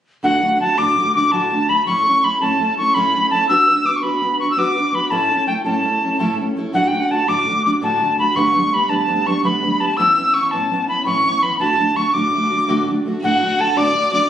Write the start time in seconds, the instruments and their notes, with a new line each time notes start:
0.23 steel-string acoustic guitar D2 A2 D3 A3 D4 F#4, tin whistle F#5
0.41 steel-string acoustic guitar D3 A3 D4 F#4
0.59 steel-string acoustic guitar D3 A3 D4 F#4, tin whistle A5
0.77 steel-string acoustic guitar D2 A2 D3 A3 D4 F#4, tin whistle D6
0.96 steel-string acoustic guitar D3 A3 D4 F#4
1.14 steel-string acoustic guitar D3 A3 D4 F#4, tin whistle D6
1.31 steel-string acoustic guitar D2 A2 D3 A3 D4 F#4, tin whistle A5
1.51 steel-string acoustic guitar D3 A3 D4 F#4
1.68 steel-string acoustic guitar D3 A3 D4 F#4, tin whistle B5
1.86 steel-string acoustic guitar A2 A3 C#4 E4 A4, tin whistle C#6
2.06 steel-string acoustic guitar C#4 E4 A4
2.22 steel-string acoustic guitar A3 C#4 E4 A4, tin whistle B5
2.40 steel-string acoustic guitar A2 A3 C#4 E4 A4, tin whistle A5
2.60 steel-string acoustic guitar A3 C#4 E4 A4
2.77 steel-string acoustic guitar C#4 E4 A4, tin whistle C#6
2.94 steel-string acoustic guitar A2 A3 C#4 E4 A4, tin whistle B5
3.14 steel-string acoustic guitar C#4 E4 A4
3.30 steel-string acoustic guitar A3 C#4 E4, tin whistle A5
3.35 steel-string acoustic guitar A4
3.49 steel-string acoustic guitar B3 D4 F#4 B4, tin whistle E6
3.68 steel-string acoustic guitar D4 F#4 B4
3.85 steel-string acoustic guitar B3 D4 F#4 B4, tin whistle D6
3.96 tin whistle C#6
4.03 steel-string acoustic guitar B3 D4 F#4 B4, tin whistle B5
4.21 steel-string acoustic guitar B3 D4 F#4 B4
4.39 steel-string acoustic guitar D4 F#4 B4, tin whistle C#6
4.51 tin whistle E6
4.56 steel-string acoustic guitar B3 D4 F#4 B4, tin whistle D6
4.76 steel-string acoustic guitar D4 F#4 B4
4.92 steel-string acoustic guitar B3 D4 F#4 B4, tin whistle B5
5.10 steel-string acoustic guitar A2 A3 C#4 E4 A4, tin whistle A5
5.29 steel-string acoustic guitar C#4 E4 A4
5.47 steel-string acoustic guitar A3 C#4 E4 A4, tin whistle G5
5.64 steel-string acoustic guitar A2 A3 C#4 E4 A4, tin whistle A5
5.83 steel-string acoustic guitar A3 C#4 E4 A4
6.01 steel-string acoustic guitar C#4 E4 A4
6.19 steel-string acoustic guitar A2 A3 C#4 E4 A4
6.38 steel-string acoustic guitar C#4 E4 A4
6.56 steel-string acoustic guitar A3 C#4 E4 A4
6.73 steel-string acoustic guitar D2 A2 D3 A3 D4 F#4, tin whistle F#5
6.88 tin whistle G5
6.93 steel-string acoustic guitar D3 A3 D4 F#4
7.00 tin whistle F#5
7.09 steel-string acoustic guitar D3 A3 D4 F#4, tin whistle A5
7.28 steel-string acoustic guitar D2 A2 D3 A3 D4 F#4, tin whistle D6
7.45 steel-string acoustic guitar D3 A3 D4 F#4
7.64 steel-string acoustic guitar D3 A3 D4 F#4, tin whistle D6
7.81 steel-string acoustic guitar D2 A2 D3 A3 D4 F#4, tin whistle A5
7.99 steel-string acoustic guitar D3 A3 D4 F#4
8.17 steel-string acoustic guitar D3 A3 D4 F#4, tin whistle B5
8.35 steel-string acoustic guitar G2 D3 G3 A3 B3 D4, tin whistle C#6
8.54 steel-string acoustic guitar G3 A3 B3 D4
8.72 steel-string acoustic guitar G3 A3 B3 D4, tin whistle B5
8.89 steel-string acoustic guitar G2 D3 G3 A3 B3 D4, tin whistle A5
9.08 steel-string acoustic guitar G3 A3 B3 D4
9.26 steel-string acoustic guitar G3 A3 B3 D4, tin whistle C#6
9.43 steel-string acoustic guitar G2 D3 G3 A3 B3 D4, tin whistle B5
9.62 steel-string acoustic guitar G3 A3 B3 D4
9.79 steel-string acoustic guitar G3 A3 B3 D4, tin whistle A5
9.97 steel-string acoustic guitar A2 E3 B3 C#4 E4, tin whistle E6
10.16 steel-string acoustic guitar B3 C#4 E4
10.34 steel-string acoustic guitar E3 B3 C#4 E4, tin whistle C#6
10.51 steel-string acoustic guitar A2 E3 B3 C#4 E4, tin whistle A5
10.70 steel-string acoustic guitar E3 B3 C#4 E4
10.87 steel-string acoustic guitar B3 C#4 E4, tin whistle B5
11.05 steel-string acoustic guitar A2 E3 B3 C#4 E4, tin whistle C#6
11.23 steel-string acoustic guitar B3 C#4 E4
11.42 steel-string acoustic guitar E3 B3 C#4 E4, tin whistle B5
11.59 steel-string acoustic guitar D2 A2 D3 A3 D4 F#4, tin whistle A5
11.77 steel-string acoustic guitar D3 A3 D4 F#4
11.95 steel-string acoustic guitar D3 A3 D4 F#4, tin whistle C#6
12.13 steel-string acoustic guitar D2 A2 D3 A3 D4 F#4, tin whistle D6
12.33 steel-string acoustic guitar D3 A3 D4 F#4
12.50 steel-string acoustic guitar D3 A3 D4 F#4
12.67 steel-string acoustic guitar D2 A2 D3 A3 D4 F#4
12.87 steel-string acoustic guitar D3 A3 D4 F#4
13.04 steel-string acoustic guitar D3 A3 D4 F#4
13.22 steel-string acoustic guitar D2 A2 D3 A3 D4 F#4, fiddle F#4, tin whistle F#5
13.41 steel-string acoustic guitar D3 A3 D4 F#4
13.58 steel-string acoustic guitar D3 A3 D4 F#4, fiddle A4, tin whistle A5
13.75 steel-string acoustic guitar D2 A2 D3 A3 D4 F#4, fiddle D5, tin whistle D6
13.93 steel-string acoustic guitar D3 A3 D4 F#4
14.11 steel-string acoustic guitar D3 A3 D4 F#4, fiddle D5, tin whistle D6